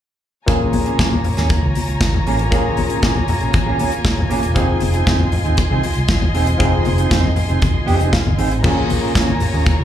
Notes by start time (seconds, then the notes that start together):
0.46 A#1 A#2 A#3 C#4 F4 G#4 C#5 G#5 A#5, kick, closed hi-hat
0.60 muted clean electric guitar stroke
0.73 A#1, muted clean electric guitar stroke, open hi-hat, high conga
0.85 A#3 C#4 G#4, closed hi-hat
0.99 A#2 A#3 C#4 G#4, kick, snare, closed hi-hat, muted conga, high conga
1.12 muted clean electric guitar stroke, high conga
1.24 muted clean electric guitar stroke, open hi-hat, muted conga, low conga
1.37 D#2 A#3 C#4 G#4, snare, closed hi-hat
1.49 kick, closed hi-hat, high conga
1.62 C#2, muted clean electric guitar stroke
1.75 open hi-hat, muted conga, high conga
1.87 C#2, muted clean electric guitar stroke, closed hi-hat
2.01 G#1, kick, snare, closed hi-hat, muted conga
2.14 muted clean electric guitar stroke, high conga, low conga
2.26 A1 A#3 C#4 G#4, open hi-hat
2.39 muted clean electric guitar stroke, closed hi-hat
2.51 A#1 A#2 A#3 C#4 G#4, kick, closed hi-hat
2.65 muted clean electric guitar stroke
2.77 A#1, muted clean electric guitar stroke, open hi-hat, muted conga, high conga
2.90 A#3 C#4 G#4, closed hi-hat
3.02 A#2 A#3 C#4 G#4, kick, snare, closed hi-hat, muted conga, high conga
3.16 muted clean electric guitar stroke, high conga
3.28 muted clean electric guitar stroke, open hi-hat, low conga
3.41 A#1 A#3 C#4 G#4, closed hi-hat
3.53 A#1, muted clean electric guitar stroke, kick, closed hi-hat, muted conga, high conga
3.66 A#3 C#4 G#4
3.79 A#3 C#4 G#4, open hi-hat, muted conga, high conga
3.92 muted clean electric guitar stroke, closed hi-hat
4.05 A#2, kick, snare, closed hi-hat, muted conga
4.17 muted clean electric guitar stroke, high conga, low conga
4.30 A#1 A#3 C#4 G#4, open hi-hat, muted conga
4.43 E1, muted clean electric guitar stroke, closed hi-hat
4.54 F1 F3 C4 D#4 G#4 D#5 C6, kick, closed hi-hat, muted conga
4.68 muted clean electric guitar stroke
4.80 F1, muted clean electric guitar stroke, open hi-hat, high conga
4.94 C4 D#4 G#4, closed hi-hat
5.06 F2 C4 D#4 G#4, kick, snare, closed hi-hat, muted conga, high conga
5.19 muted clean electric guitar stroke, high conga
5.31 muted clean electric guitar stroke, open hi-hat, low conga
5.44 D#2 C4 D#4 G#4, closed hi-hat
5.57 muted clean electric guitar stroke, kick, closed hi-hat, high conga
5.70 C2 C4 D#4 G#4
5.83 muted clean electric guitar stroke, open hi-hat, high conga
5.95 C2, muted clean electric guitar stroke, closed hi-hat
6.08 G#1, kick, snare, closed hi-hat, muted conga
6.21 muted clean electric guitar stroke, high conga, low conga
6.34 E1 C4 D#4 G#4, open hi-hat, muted conga
6.47 muted clean electric guitar stroke, closed hi-hat
6.58 F1 F3 C4 D#4 G#4, kick, closed hi-hat, muted conga
6.72 muted clean electric guitar stroke
6.85 F1, muted clean electric guitar stroke, open hi-hat, high conga
6.98 C4 D#4 G#4, closed hi-hat
7.10 F2 C4 D#4 G#4, kick, snare, closed hi-hat, muted conga, high conga
7.23 muted clean electric guitar stroke, high conga
7.36 muted clean electric guitar stroke, open hi-hat, low conga
7.49 F1 C4 D#4 G#4, closed hi-hat
7.62 F1, muted clean electric guitar stroke, kick, closed hi-hat, muted conga, high conga
7.74 muted clean electric guitar stroke
7.86 F2 C4 D#4 G#4, open hi-hat, high conga
7.99 F1 C4 D#4 G#4, closed hi-hat
8.13 F5, kick, snare, closed hi-hat
8.25 G1, muted clean electric guitar stroke, high conga, low conga
8.38 G#1 C4 D#4 G#4, open hi-hat
8.51 A1, muted clean electric guitar stroke, closed hi-hat
8.63 A#1 A#2 A#3 C4 C#4 F4 G#4 C#5 G#5 A#5, kick, crash, tambourine, low conga
8.71 C#4
8.77 muted clean electric guitar stroke
8.89 A#1, muted clean electric guitar stroke, open hi-hat, tambourine, muted conga, high conga
9.02 C#4 F4 G#4
9.14 A#2 C#4 F4 G#4, kick, snare, closed hi-hat, tambourine
9.27 muted clean electric guitar stroke, high conga
9.40 muted clean electric guitar stroke, open hi-hat, tambourine, low conga
9.53 D#2 C#4 F4 G#4, tambourine
9.66 muted clean electric guitar stroke, kick, closed hi-hat, tambourine, muted conga, high conga
9.79 C#2, muted clean electric guitar stroke